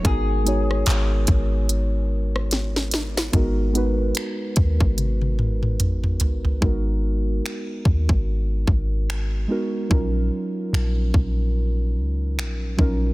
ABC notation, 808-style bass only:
X:1
M:4/4
L:1/16
Q:"Swing 16ths" 1/4=73
K:G#dor
V:1 name="808-style bass" clef=bass
G,,,4 G,,,2 G,,,8- G,,,2 | G,,,4 z2 D,, G,,,8- G,,, | G,,,4 z2 D,, G,,,3 G,,,4 z2 | A,,,2 z2 A,,,2 A,,,4 C,,2 A,,,2 A,,,2 |]